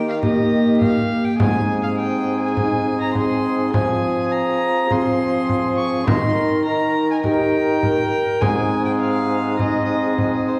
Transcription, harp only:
Already playing: D#3 D#4
0.23 A#3 D#4 G4
1.40 G#2
2.56 C4 D#4 G#4
3.74 F3
4.91 C4 F4 G#4
6.07 D#3
7.24 D#4 G4 A#4
8.42 G#2
9.59 D#4 G#4 C5

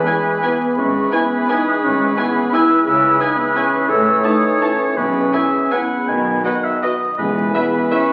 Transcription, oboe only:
Already playing: B4
0.79 B4
2.87 B4
3.89 C#5
4.97 B4
5.34 E5
5.72 F#5
6.09 G#5
6.45 F#5
6.64 E5
6.82 D#5
7.19 B4

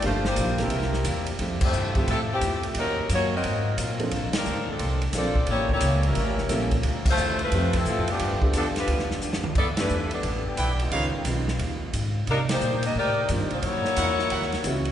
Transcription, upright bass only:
0.03 G1
0.37 A#1
0.70 C2
1.05 E2
1.39 F2
1.73 G2
2.07 A2
2.41 E2
2.75 D#2
3.09 F#2
3.43 G#2
3.77 A#2
4.11 A#1
4.33 muted upright bass stroke
4.46 D2
4.79 C2
5.13 A#1
5.47 A1
5.81 C#2
6.16 A1
6.49 A#1
6.84 D2
7.18 E2
7.52 F2
7.85 A2
7.98 F2
8.09 D2
8.20 G2
8.32 F2
8.43 D2
8.53 E2
8.88 D2
9.22 F2
9.55 G2
9.90 E2
10.24 A1
10.57 B1
10.91 C#2
11.15 muted upright bass stroke
11.25 B1
11.60 D#2
11.93 G#2
12.27 C3
12.61 A#2
12.95 A2
13.29 G2
13.41 D#2
13.51 C2
13.63 F#2
13.97 E2
14.31 D#2
14.64 C#2

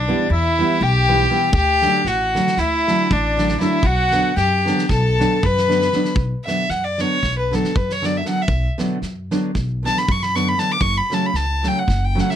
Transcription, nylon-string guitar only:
0.08 E3 G3 B3 E4
0.59 E3 G3 B3 E4
1.08 E3 G3 B3 E4
1.30 E3 G3 B3 E4
1.82 D3 F#3 A3 D4
2.34 D3 F#3 A3 D4
2.87 D3 F#3 A3 D4
3.37 D3 F#3 A3 D4
3.60 D3 F#3 A3 D4
4.12 D3 F#3 B3 D4
4.65 D3 F#3 B3 D4
5.19 D3 F#3 B3 D4
5.67 D3 F#3 B3 D4
5.93 D3 F#3 B3 D4
6.46 D3 F#3 B3 D4
6.99 D3 F#3 B3 D4
7.51 D3 F#3 B3 D4
8.02 D3 F#3 B3 D4
8.25 D3 F#3 B3 D4
8.78 D3 F#3 B3 D4
9.31 D3 F#3 B3 D4
9.83 D3 F#3 B3 D4
10.35 D3 F#3 B3 D4
10.58 D3 F#3 B3 D4
11.10 C#3 F#3 A3 C#4
11.63 C#3 F#3 A3 C#4
12.15 C#3 F#3 A3 C#4

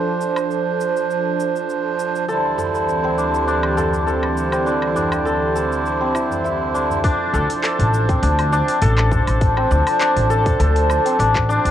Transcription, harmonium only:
Already playing: F3 D4 C5
2.26 D3 G3 E4
2.30 C5
7.02 F3 D4 C5
7.47 F3 D4
7.51 C5
9.11 F3 D4 C5
9.40 F3 D4 C5
9.85 F3 D4
9.89 C5
11.48 F3 D4 C5

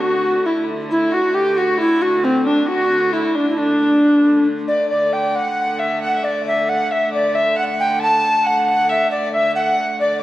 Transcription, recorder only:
0.01 F#4
0.46 E4
0.91 E4
1.14 F#4
1.35 G4
1.58 F#4
1.80 E4
2.02 F#4
2.24 C4
2.47 D4
2.68 F#4
3.13 E4
3.36 D4
3.49 E4
3.58 D4
4.68 D5
4.90 D5
5.13 G5
5.35 F#5
5.80 E5
6.02 F#5
6.25 D5
6.47 E5
6.69 F#5
6.92 E5
7.14 D5
7.35 E5
7.58 F#5
7.80 G5
8.02 A5
8.47 F#5
8.90 E5
9.11 D5
9.33 E5
9.55 F#5
10.00 D5

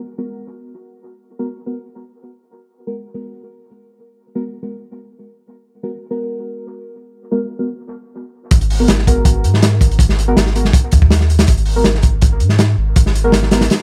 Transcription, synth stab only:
0.18 G#3 B3 F#4 A#4
1.39 G#3 B3 F#4 A#4
1.66 G#3 B3 F#4 A#4
2.87 G#3 B3 F#4 A#4
3.14 G#3 B3 F#4 A#4
4.35 G#3 B3 F#4 A#4
4.63 G#3 B3 F#4 A#4
5.83 G#3 B3 F#4 A#4
6.11 G#3 B3 F#4 A#4
7.31 G#3 B3 F#4 A#4
7.59 G#3 B3 F#4 A#4
8.80 G#3 B3 F#4 A#4
9.07 G#3 B3 F#4 A#4
10.28 G#3 B3 F#4 A#4
10.55 G#3 B3 F#4 A#4
11.76 G#3 B3 F#4 A#4
13.24 G#3 B3 F#4 A#4
13.51 G#3 B3 F#4 A#4

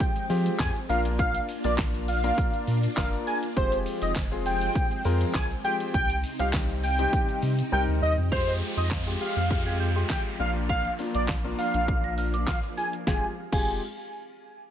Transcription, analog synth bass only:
0.30 F3
0.59 F2
0.89 A#1
1.64 A#1
2.68 A#2
2.97 F#1
3.57 F1
4.02 F1
5.05 F2
5.34 B1
5.94 C2
6.40 C2
7.43 C3
7.72 C2
7.88 D2
8.02 D#2
8.18 F2
8.32 F2
8.77 F2
9.36 F2
10.40 A#1
11.15 A#1
11.74 A#1
13.07 F1
13.52 F1

